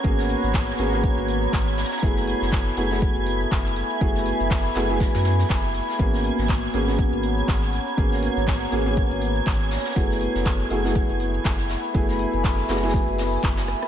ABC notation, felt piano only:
X:1
M:4/4
L:1/16
Q:"Swing 16ths" 1/4=121
K:F#mix
V:1 name="Felt piano"
[A,B,CFG]6 [A,B,CFG] [A,B,CFG]8- [A,B,CFG] | [=A,B,EFG]6 [A,B,EFG] [A,B,EFG]8- [A,B,EFG] | [=A,B,EFG]6 [A,B,EFG] [A,B,EFG]8- [A,B,EFG] | [A,B,CFG]6 [A,B,CFG] [A,B,CFG]8- [A,B,CFG] |
[A,B,CFG]6 [A,B,CFG] [A,B,CFG]8- [A,B,CFG] | [=A,B,EFG]6 [A,B,EFG] [A,B,EFG]8- [A,B,EFG] | [=A,B,EFG]6 [A,B,EFG] [A,B,EFG]8- [A,B,EFG] |]